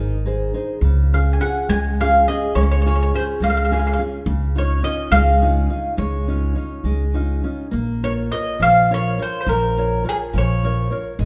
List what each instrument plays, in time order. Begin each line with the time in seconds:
Already playing: upright bass G#1, nylon-string guitar D#3 D#4 G#4 C5
0.26 nylon-string guitar D#4 G#4 C5
0.54 nylon-string guitar D#4 G#4 C5
0.81 upright bass C#2, nylon-string guitar C#3
1.13 nylon-string guitar C#4 F4 G#4, mandolin F5
1.33 mandolin G#5
1.40 nylon-string guitar C#4 F4 G#4, mandolin F#5
1.69 upright bass C#2, nylon-string guitar G#3, mandolin G#5
2.00 nylon-string guitar C#4 F4 G#4, mandolin F5
2.28 nylon-string guitar C#4 F4 G#4, mandolin D#5
2.55 upright bass C#2, nylon-string guitar G#3, mandolin C#5
2.63 mandolin C#5
2.72 mandolin C#5
2.82 mandolin C#5
2.86 nylon-string guitar C#4 F4 G#4, mandolin C#5
2.96 mandolin C#5
3.03 mandolin C#5
3.14 nylon-string guitar C#4 F4 G#4, mandolin C5
3.40 upright bass C#2, nylon-string guitar G#3, mandolin F5
3.50 mandolin F5
3.57 mandolin F5
3.65 mandolin F5
3.71 nylon-string guitar C#4 F4 G#4, mandolin F5
3.79 mandolin F5
3.87 mandolin F5
3.93 mandolin F5
3.99 nylon-string guitar C#4 F4 G#4
4.26 upright bass C#2, nylon-string guitar C#3
4.55 nylon-string guitar C#4 D#4 F4, mandolin C#5
4.83 nylon-string guitar C#4 D#4 F4, mandolin D#5
5.11 upright bass C#2, nylon-string guitar G#3, mandolin F5
5.42 nylon-string guitar C#4 D#4 F4
5.70 nylon-string guitar C#4 D#4 F4
5.97 upright bass C#2, nylon-string guitar G#3, mandolin C#5
6.28 nylon-string guitar C#4 D#4 F4
6.55 nylon-string guitar C#4 D#4 F4
6.84 upright bass C#2, nylon-string guitar G#3
7.14 nylon-string guitar C#4 D#4 F4
7.44 nylon-string guitar C#4 D#4 F4
7.71 upright bass A#1, nylon-string guitar A#3
8.03 nylon-string guitar F4 A#4 C#5, mandolin C#5
8.32 nylon-string guitar F4 A#4 C#5, mandolin D#5
8.60 upright bass A#1, nylon-string guitar F3, mandolin F5
8.91 nylon-string guitar F4 A#4 C#5, mandolin C#5
9.19 nylon-string guitar F4 A#4 C#5, mandolin C5
9.41 mandolin C5
9.47 upright bass A#1, nylon-string guitar F3, mandolin A#4
9.77 nylon-string guitar F4 A#4 C#5
10.05 nylon-string guitar F4 A#4 C#5
10.09 mandolin G#4
10.33 upright bass A#1, nylon-string guitar F3
10.38 mandolin C#5
10.63 nylon-string guitar F4 A#4 C#5
10.91 nylon-string guitar F4 A#4 C#5
11.19 upright bass G#1, nylon-string guitar G#3